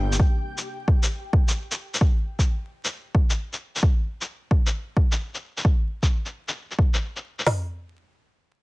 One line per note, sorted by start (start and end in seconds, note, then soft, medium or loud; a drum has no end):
0.00 0.18 G1 medium
0.00 0.15 C3 medium
0.00 0.15 G3 medium
0.00 0.15 A#3 medium
0.00 0.15 D4 medium
0.00 0.21 G4 medium
0.00 0.21 G5 medium
0.12 shaker medium
0.20 kick loud
0.58 shaker soft
0.88 kick loud
1.03 shaker soft
1.33 kick loud
1.48 shaker soft
1.71 shaker soft
1.94 shaker soft
2.01 kick loud
2.39 kick medium
2.39 shaker soft
2.85 shaker soft
3.15 kick medium
3.30 shaker soft
3.53 shaker soft
3.76 shaker soft
3.83 kick loud
4.21 shaker soft
4.51 kick medium
4.66 shaker soft
4.97 kick medium
5.12 shaker soft
5.35 shaker soft
5.57 shaker soft
5.65 kick loud
6.03 kick medium
6.03 shaker medium
6.26 shaker soft
6.48 shaker medium
6.71 shaker soft
6.79 kick medium
6.94 shaker medium
7.16 shaker soft
7.39 shaker soft
7.47 snare medium
7.47 floor tom medium
7.47 open hi-hat medium